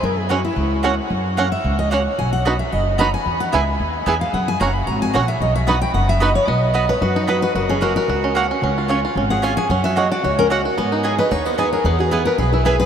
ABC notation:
X:1
M:4/4
L:1/8
Q:"Swing" 1/4=224
K:B
V:1 name="Steel-string acoustic guitar"
A G F E4- E | z2 f e2 d c2 | g f2 e d2 a g- | g f e2 z3 ^e |
f g a b a g f e | d e f =g f e d c | d3 c B D F B | A G A A3 z2 |
z4 z f ^e g | f e d =d c A z2 | g3 d c =c B A | G F G A B E G B |]
V:2 name="Mandolin"
z2 [A,Fcf] z3 [A,Fcf] z | z2 [A,Fcf] z3 [A,Fcf] z | z2 [B,Fdb] z3 [B,Fdb] z | z2 [B,EBg] z3 [B,EBg] z |
z2 [A,Fcf] z3 [A,Fcf] z | z2 [B,Fdb] z3 [B,Fdb] z | z2 [B,Fdb] z3 [B,Fdb] z | z2 [A,Fcf] z3 [A,Fcf] z |
z2 [C^Ecg] z3 [CEcg] z | z2 [A,Fcf] z3 [A,Fcf] z | z2 [B,Gdg] z3 [B,Gdg] z | z2 [B,EBg] z3 [B,EBg] z |]
V:3 name="Five-string banjo"
z2 [CF] z3 [CF] z | z2 [CF] z3 [CF] z | z2 [B,DF] z3 [B,DF] z | z2 [B,EG] z3 [B,EG] z |
z2 [CF] z3 [CF] z | z2 [B,DF] z3 [B,DF] z | B,2 B, B F D B F | F C F F F C F C |
C ^E C E C G C G | C F F F F C F F | B, D G B D B, D G | B, G B, B G E B G |]
V:4 name="Upright bass" clef=bass
F,,4 C,,4 | F,,4 C,,4 | B,,,4 F,,,4 | E,,2 C,,2 D,,2 E,,2 |
F,,2 F,,,2 G,,,2 A,,,2 | B,,,4 F,,,4 | B,,,4 F,,4 | F,,,4 C,,4 |
C,,4 G,,,4 | F,,4 C,,4 | G,,4 D,,4 | E,,4 B,,,4 |]